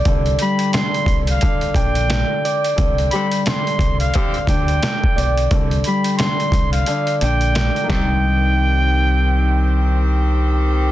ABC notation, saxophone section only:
X:1
M:4/4
L:1/16
Q:"Swing 16ths" 1/4=88
K:Cm
V:1 name="Saxophone section"
z16 | z2 [D,CG] z4 z [D,CG]2 z6 | z12 z2 [E,CG]2- | [E,CG]16 |]